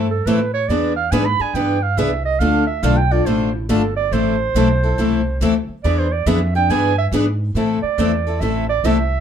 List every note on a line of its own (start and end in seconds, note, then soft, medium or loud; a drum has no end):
0.00 0.25 G2 medium
0.11 0.28 A4 medium
0.26 0.68 A2 medium
0.26 0.39 E3 medium
0.26 0.39 A3 medium
0.26 0.39 C4 medium
0.26 0.39 E4 medium
0.26 0.39 A4 medium
0.26 0.53 B4 medium
0.54 0.70 C#5 loud
0.68 1.11 E2 medium
0.68 0.92 E3 medium
0.68 0.92 B3 medium
0.68 0.92 D4 medium
0.68 0.92 G#4 medium
0.68 0.92 B4 medium
0.68 0.96 D5 medium
0.96 1.13 F5 medium
1.12 1.38 G#2 loud
1.12 1.24 E3 medium
1.12 1.24 B3 loud
1.12 1.24 D4 medium
1.12 1.24 G#4 loud
1.12 1.24 B4 loud
1.12 1.27 G#5 medium
1.25 1.43 B5 loud
1.40 1.54 B3 soft
1.40 1.55 D4 soft
1.40 1.54 G#4 medium
1.40 1.56 G#5 medium
1.40 muted upright bass stroke soft
1.54 1.96 G2 medium
1.54 1.77 E3 medium
1.54 1.77 B3 medium
1.54 1.78 D4 medium
1.54 1.78 G#4 medium
1.54 1.78 B4 medium
1.54 1.84 G5 medium
1.83 2.00 F5 loud
1.97 2.39 C2 medium
1.97 2.09 E3 medium
1.97 2.10 B3 medium
1.97 2.10 D4 loud
1.97 2.10 G#4 loud
1.97 2.10 B4 loud
1.97 2.25 E5 medium
2.25 2.41 D#5 medium
2.40 2.82 D2 medium
2.40 2.63 D3 medium
2.40 2.63 A3 medium
2.40 2.63 D4 medium
2.40 2.63 F4 medium
2.40 2.63 A4 medium
2.40 2.66 F5 loud
2.67 2.85 E5 medium
2.83 3.25 B1 loud
2.83 2.95 D3 medium
2.83 2.95 A3 loud
2.83 2.96 D4 loud
2.83 2.96 F4 loud
2.83 2.96 A4 medium
2.83 2.98 F5 medium
2.97 3.13 G5 medium
3.11 3.25 D4 soft
3.11 3.26 F4 soft
3.11 3.26 A4 medium
3.11 3.27 D5 medium
3.26 3.68 A1 medium
3.26 3.48 D3 medium
3.26 3.49 A3 medium
3.26 3.49 D4 medium
3.26 3.49 F4 medium
3.26 3.49 A4 medium
3.26 3.54 C5 medium
3.54 3.70 E4 medium
3.69 4.11 G1 medium
3.69 3.81 D3 medium
3.69 3.81 A3 medium
3.69 3.81 D4 loud
3.69 3.81 F4 medium
3.69 3.96 A4 medium
3.69 3.81 A4 loud
3.96 4.14 D5 loud
4.11 4.54 A1 medium
4.11 4.35 E3 medium
4.11 4.35 A3 medium
4.11 4.35 C4 medium
4.11 4.35 E4 medium
4.11 4.35 A4 medium
4.11 5.41 C5 loud
4.54 4.96 B1 medium
4.54 4.67 E3 medium
4.54 4.67 A3 medium
4.54 4.68 C4 loud
4.54 4.68 E4 loud
4.54 4.68 A4 loud
4.83 4.99 C4 soft
4.83 4.98 E4 soft
4.83 4.98 A4 medium
4.98 5.40 C2 medium
4.98 5.21 E3 medium
4.98 5.21 A3 medium
4.98 5.21 C4 medium
4.98 5.21 E4 medium
4.98 5.21 A4 medium
5.41 5.67 D2 medium
5.41 5.53 E3 medium
5.41 5.53 A3 medium
5.41 5.53 C4 medium
5.41 5.54 E4 loud
5.41 5.54 A4 loud
5.69 muted upright bass stroke soft
5.84 6.26 E2 medium
5.84 6.06 E3 medium
5.84 6.06 B3 medium
5.84 6.06 D4 medium
5.84 6.07 G#4 medium
5.84 6.07 B4 medium
5.84 6.00 D5 medium
5.99 6.14 C5 medium
6.12 6.29 D5 medium
6.26 6.68 F2 loud
6.26 6.38 E3 medium
6.26 6.39 B3 loud
6.26 6.39 D4 medium
6.26 6.39 G#4 loud
6.26 6.39 B4 loud
6.26 6.55 E5 medium
6.55 6.70 B3 soft
6.55 6.70 D4 medium
6.55 6.69 G#4 medium
6.55 6.72 G5 loud
6.69 7.11 G2 medium
6.69 6.92 E3 medium
6.69 6.92 B3 medium
6.69 6.93 D4 medium
6.69 6.93 G#4 medium
6.69 6.92 B4 medium
6.69 6.98 G#5 loud
6.98 7.07 E5 loud
7.12 7.54 G#2 medium
7.12 7.25 E3 medium
7.12 7.25 B3 medium
7.12 7.25 D4 medium
7.12 7.25 G#4 medium
7.12 7.25 B4 medium
7.55 7.81 A2 medium
7.55 7.78 E3 medium
7.55 7.78 A3 medium
7.55 7.78 C4 medium
7.55 7.78 E4 medium
7.55 7.78 A4 medium
7.83 8.42 D5 medium
7.83 muted upright bass stroke soft
7.98 8.40 E2 loud
7.98 8.11 E3 medium
7.98 8.11 A3 medium
7.98 8.11 C4 medium
7.98 8.11 E4 loud
7.98 8.11 A4 medium
8.27 8.41 C4 soft
8.27 8.42 E4 soft
8.27 8.41 A4 medium
8.40 8.83 A1 medium
8.40 8.64 E3 medium
8.40 8.64 A3 medium
8.40 8.64 C4 medium
8.40 8.64 E4 medium
8.40 8.64 A4 medium
8.40 8.69 E5 medium
8.69 8.87 D5 loud
8.84 9.20 C2 medium
8.84 8.96 E3 medium
8.84 8.96 A3 medium
8.84 8.97 C4 medium
8.84 8.97 E4 medium
8.84 8.97 A4 medium
8.84 9.20 E5 loud